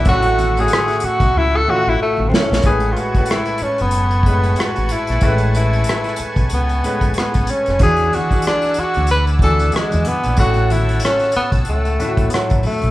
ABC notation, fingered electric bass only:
X:1
M:4/4
L:1/16
Q:"Swing 16ths" 1/4=93
K:A
V:1 name="Fingered electric bass" clef=bass
A,,,4 z3 B,,, C,,2 z A,,, z A,,, z _B,,, | A,,,2 z4 z F,,,4- F,,, z G,,, z _B,,, | A,,,4 z3 B,,, C,,2 z A,,, z A,,, z =F,,, | E,,2 z4 z D,,4- D,, z E,, z _B,,, |
A,,,4 z3 B,,, C,,2 z A,,, z A,,, z _B,,, |]